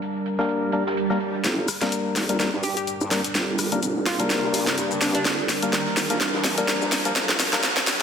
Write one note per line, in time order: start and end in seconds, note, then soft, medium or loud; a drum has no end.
0.00 1.41 G3 medium
0.00 1.41 D4 medium
0.00 1.41 A#4 medium
0.00 closed hi-hat medium
0.26 closed hi-hat medium
0.39 0.71 G3 medium
0.39 0.71 A#3 medium
0.39 0.71 D4 medium
0.39 0.71 A#4 loud
0.39 snare soft
0.49 closed hi-hat medium
0.49 swell medium
0.72 0.83 G3 medium
0.72 0.83 A#3 medium
0.72 0.83 D4 medium
0.72 0.83 A#4 medium
0.72 closed hi-hat medium
0.86 snare soft
0.97 closed hi-hat medium
1.10 1.18 G3 loud
1.10 1.18 A#3 medium
1.10 1.18 D4 medium
1.10 1.18 A#4 loud
1.10 snare soft
1.20 closed hi-hat medium
1.44 1.67 G1 medium
1.44 8.02 G3 medium
1.44 8.02 D4 medium
1.44 8.02 A#4 medium
1.44 snare soft
1.44 closed hi-hat medium
1.44 riser medium
1.44 shaker soft
1.68 cross-stick medium
1.68 open hi-hat loud
1.68 shaker medium
1.82 2.26 G3 medium
1.82 2.26 A#3 medium
1.82 2.26 D4 medium
1.82 2.26 A#4 medium
1.82 snare soft
1.82 closed hi-hat medium
1.82 shaker soft
1.92 closed hi-hat medium
1.92 shaker soft
2.16 2.51 G#1 medium
2.16 snare medium
2.16 open hi-hat medium
2.16 shaker medium
2.29 2.37 G3 medium
2.29 2.37 A#3 medium
2.29 2.37 D4 medium
2.29 2.37 A#4 medium
2.29 closed hi-hat medium
2.29 shaker soft
2.40 2.50 G3 medium
2.40 2.50 A#3 medium
2.40 2.50 D4 medium
2.40 2.50 A#4 loud
2.40 snare medium
2.40 closed hi-hat medium
2.40 shaker soft
2.53 2.75 G2 medium
2.64 2.72 G4 medium
2.64 open hi-hat medium
2.64 shaker medium
2.77 2.84 G4 medium
2.77 closed hi-hat medium
2.77 shaker soft
2.87 closed hi-hat medium
2.87 shaker soft
3.01 3.09 G2 medium
3.01 shaker soft
3.11 3.21 G3 medium
3.11 3.21 A#3 medium
3.11 3.21 D4 medium
3.11 3.21 A#4 medium
3.11 snare medium
3.11 open hi-hat medium
3.11 shaker medium
3.24 closed hi-hat medium
3.24 shaker soft
3.35 3.70 G1 medium
3.35 snare medium
3.35 closed hi-hat medium
3.35 shaker soft
3.59 cross-stick medium
3.59 open hi-hat loud
3.59 shaker medium
3.72 3.94 F1 medium
3.72 3.80 G3 medium
3.72 3.80 A#3 medium
3.72 3.80 D4 medium
3.72 3.80 A#4 medium
3.72 closed hi-hat medium
3.72 shaker soft
3.83 closed hi-hat medium
3.83 shaker soft
3.96 4.41 G#1 medium
4.06 4.20 F4 medium
4.06 snare medium
4.06 open hi-hat loud
4.06 shaker medium
4.20 5.25 G3 medium
4.20 5.25 A#3 medium
4.20 5.25 D4 medium
4.20 5.25 A#4 loud
4.20 closed hi-hat medium
4.20 shaker soft
4.30 snare medium
4.30 closed hi-hat medium
4.30 shaker soft
4.44 4.65 G2 loud
4.54 open hi-hat loud
4.54 shaker medium
4.67 4.76 G1 loud
4.67 snare medium
4.67 closed hi-hat medium
4.67 shaker soft
4.78 5.24 G2 loud
4.78 closed hi-hat medium
4.78 shaker soft
4.91 shaker soft
5.01 5.12 D4 medium
5.01 snare medium
5.01 open hi-hat medium
5.01 shaker medium
5.15 5.63 D4 medium
5.15 closed hi-hat medium
5.15 shaker soft
5.25 5.48 G1 medium
5.25 snare medium
5.25 closed hi-hat soft
5.25 shaker soft
5.49 snare medium
5.49 open hi-hat loud
5.49 shaker medium
5.62 6.07 G3 medium
5.62 6.07 A#3 medium
5.62 6.07 D4 medium
5.62 6.07 A#4 medium
5.62 closed hi-hat medium
5.62 shaker soft
5.73 snare medium
5.73 closed hi-hat soft
5.73 shaker soft
5.97 6.32 G#1 loud
5.97 snare medium
5.97 open hi-hat medium
5.97 shaker medium
6.10 6.18 G3 medium
6.10 6.18 A#3 medium
6.10 6.18 D4 medium
6.10 6.18 A#4 medium
6.10 closed hi-hat medium
6.10 shaker soft
6.21 snare medium
6.21 closed hi-hat medium
6.21 shaker soft
6.34 6.56 G2 loud
6.44 snare medium
6.44 open hi-hat loud
6.44 shaker medium
6.58 7.02 G3 medium
6.58 7.02 A#3 medium
6.58 7.02 D4 medium
6.58 7.02 A#4 medium
6.58 closed hi-hat medium
6.58 shaker soft
6.68 snare medium
6.68 closed hi-hat soft
6.68 shaker soft
6.82 6.90 G2 loud
6.82 shaker soft
6.92 snare medium
6.92 open hi-hat loud
6.92 shaker medium
7.05 7.13 G3 medium
7.05 7.13 A#3 medium
7.05 7.13 D4 medium
7.05 7.13 A#4 medium
7.05 closed hi-hat medium
7.05 shaker soft
7.16 7.51 G1 loud
7.16 snare medium
7.16 closed hi-hat soft
7.16 shaker soft
7.29 snare medium
7.29 shaker soft
7.40 snare medium
7.40 open hi-hat loud
7.40 shaker medium
7.53 7.75 F1 loud
7.53 7.62 G3 medium
7.53 7.62 A#3 medium
7.53 7.62 D4 medium
7.53 7.62 A#4 medium
7.53 snare medium
7.53 closed hi-hat medium
7.53 shaker soft
7.63 snare loud
7.63 closed hi-hat soft
7.63 shaker soft
7.77 snare medium
7.87 snare loud
7.87 open hi-hat medium
7.87 shaker medium